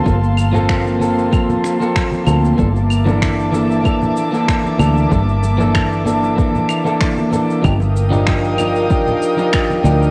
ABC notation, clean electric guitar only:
X:1
M:4/4
L:1/16
Q:"Swing 16ths" 1/4=95
K:Gm
V:1 name="Clean electric guitar"
[F,B,CA] z2 [F,B,CA]3 [F,B,CA]2 [F,B,CA]3 [F,B,CA]3 [F,B,CA]2 | [=E,B,DA] z2 [E,B,DA]3 [E,B,DA]2 [E,B,DA]3 [E,B,DA]3 [E,B,DA]2 | [=E,B,DA] z2 [E,B,DA]3 [E,B,DA]2 [E,B,DA]3 [E,B,DA]3 [E,B,DA]2 | [F,DEG] z2 [F,DEG]3 [F,DEG]2 [F,DEG]3 [F,DEG]3 [F,DEG]2 |]